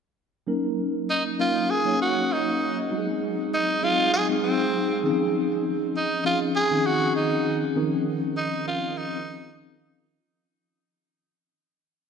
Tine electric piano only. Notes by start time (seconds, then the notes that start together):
0.47 F#3 A#3 C#4 D#4 A#4
1.39 F#3 A#3 C#4 D#4 A#4
1.85 F#3 A#3 C#4 D#4 C#5
2.90 F#3 G#3 C4 D#4 F#4
2.98 G#4
3.81 F#3 G#3 C4 D#4 G#4
4.29 F#3 G#3 C4 D#4 G#4
5.03 D#3 C4 C#4 D#4 G#4
5.10 F3
6.24 F3 C4 C#4 D#4 G#4
6.71 D#3 C4 C#4 D#4 G#4
7.75 D#3 C4 C#4 D#4 A#4
7.82 F3
8.66 F3 C4 C#4 D#4 A#4
9.11 F3 C4 C#4 D#4 F4